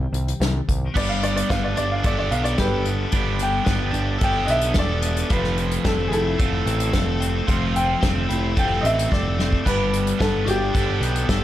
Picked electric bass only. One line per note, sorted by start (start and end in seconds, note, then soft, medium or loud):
0.12 0.32 C2 medium
0.40 0.60 C2 medium
0.68 0.88 C2 medium
0.96 1.42 G1 medium
1.50 1.73 G1 medium
1.78 2.01 G1 medium
2.04 2.27 G1 medium
2.31 2.55 B1 medium
2.58 3.05 G1 medium
3.13 3.60 G1 medium
3.67 3.91 G1 medium
3.93 4.17 G1 medium
4.21 4.45 G1 medium
4.48 4.72 B1 medium
4.76 5.22 E1 medium
5.30 5.77 F1 medium
5.85 6.08 F1 medium
6.11 6.35 F1 medium
6.39 6.63 F1 medium
6.66 6.90 A1 medium
6.94 7.40 F1 medium
7.48 7.94 F1 loud
8.03 8.26 F1 medium
8.30 8.53 F1 medium
8.57 8.80 F1 loud
8.83 9.07 A1 medium
9.12 9.58 F1 medium
9.66 10.12 G1 medium
10.20 10.43 G1 medium
10.47 10.70 G1 loud
10.75 10.97 G1 loud
11.00 11.24 B1 loud
11.29 11.44 G1 loud